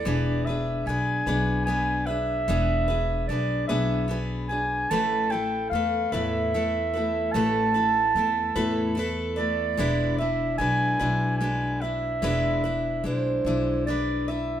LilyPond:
<<
  \new Staff \with { instrumentName = "Clarinet" } { \time 6/8 \key e \phrygian \tempo 4. = 49 d''8 e''8 gis''4 gis''8 e''8~ | e''4 d''8 e''8 r8 gis''8 | a''8 g''8 f''8 e''4. | a''2 r8 d''8~ |
d''8 e''8 gis''4 gis''8 e''8~ | e''4 c''4 d''8 e''8 | }
  \new Staff \with { instrumentName = "Steel-string acoustic guitar" } { \time 6/8 \key e \phrygian <e b d' gis' b'>8 <d' gis' b'>8 <b d' gis' b'>8 <e b d' gis' b'>8 <b d' gis' b'>8 <d' gis' b'>8 | <e b d' gis' b'>8 <d' gis' b'>8 <b d' gis' b'>8 <e b d' gis' b'>8 <b d' gis' b'>8 <d' gis' b'>8 | <a, e a e' a' b'>8 <a e' a' b'>8 <a a' b'>8 <a, e a e' a' b'>8 <a e' a' b'>8 <a e' a' b'>8 | <a, e a e' a' b'>8 <a e' a' b'>8 <a e' a' b'>8 <a, e a e' a' b'>8 <a e' a' b'>8 <a e' a' b'>8 |
<e gis d' e' b'>8 <d' e' b'>8 <gis d' e' b'>8 <e gis d' e' b'>8 <gis d' e' b'>8 <d' e' b'>8 | <e gis d' e' b'>8 <d' e' b'>8 <gis d' e'>8 <e gis d' e'>8 <gis d' e' b'>8 <d' e' b'>8 | }
  \new Staff \with { instrumentName = "Upright bass" } { \clef bass \time 6/8 \key e \phrygian e,,4 b,,8 b,,4. | e,,4 b,,8 b,,4. | a,,4 e,8 e,4. | a,,4 e,8 e,4. |
e,,4 b,,8 b,,4. | e,,4 b,,8 b,,4. | }
>>